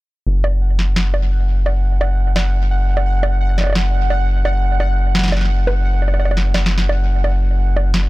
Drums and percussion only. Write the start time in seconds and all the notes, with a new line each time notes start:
0.44 high bongo
0.79 snare
0.96 snare
1.14 high bongo
1.66 high bongo
2.01 high bongo
2.36 snare, high bongo
2.97 high bongo
3.23 high bongo
3.58 snare, high bongo
3.61 high bongo
3.64 high bongo
3.67 high bongo
3.70 high bongo
3.73 snare, high bongo
4.10 high bongo
4.45 high bongo
4.80 high bongo
5.15 snare
5.19 snare
5.24 snare
5.28 snare
5.32 snare, high bongo
5.37 snare
5.41 snare
5.45 snare
5.67 high bongo
6.02 high bongo
6.08 high bongo
6.14 high bongo
6.20 high bongo
6.25 high bongo
6.31 high bongo
6.37 snare
6.54 snare, high bongo
6.66 snare
6.78 snare
6.89 high bongo
7.24 high bongo
7.76 high bongo
7.94 snare